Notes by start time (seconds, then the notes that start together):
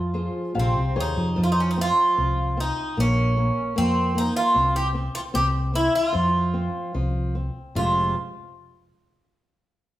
Already playing: F2 F3 F4
0.14 F4 G#4 C5
0.55 A#1 C3 F5
0.59 C4
0.77 C2
0.95 D#2 F4 G#4 C5 C#5
1.00 D#4
1.17 F2
1.36 F2 F3
1.44 F4
1.52 D#4
1.60 C#4
1.71 D#4
1.77 C4 F4
2.18 C2 F3
2.57 C4 D#4
2.97 A#1 A#3 C#4
3.37 A#3
3.76 F2 A#3 C4
4.15 A#3 D#4
4.36 F4
4.54 C2 C4
4.76 G4
4.94 C4
5.15 F4
5.34 C2 C4 G4
5.74 C4 E4
5.95 F4
6.13 F2 F3
6.54 C4
6.94 C2 F3
7.35 C4
7.75 F1 F2 C3 F3 G#3 C4 F4